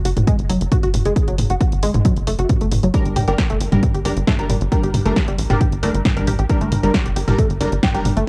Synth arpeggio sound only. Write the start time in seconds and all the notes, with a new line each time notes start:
0.05 F#4
0.27 G#3
0.49 F#3
0.72 F#4
0.83 F#4
1.05 G#3
1.28 F#3
1.50 F#4
1.61 F#4
1.83 G#3
2.05 F#3
2.27 A3
2.39 F#4
2.61 A3
2.83 F#3
2.94 G3
3.16 G4
3.28 G4
3.50 A3
3.72 G3
3.94 G4
4.05 G4
4.27 A3
4.50 G3
4.72 G4
4.83 G4
5.06 A3
5.28 G3
5.50 G4
5.61 G4
5.83 A3
6.05 G3
6.27 G4
6.39 G4
6.61 A3
6.83 G3
7.06 G4
7.16 G4
7.38 A3
7.61 G3
7.83 G4
7.94 G4
8.17 A3